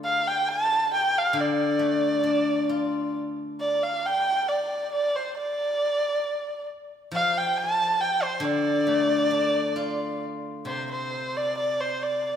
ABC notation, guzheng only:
X:1
M:2/4
L:1/8
Q:1/4=68
K:none
V:1 name="Guzheng"
[D,A,DFA]2 z D, | A, D F2- | F2 z2 | z4 |
F,3 D, | A, D F2 | C,4 |]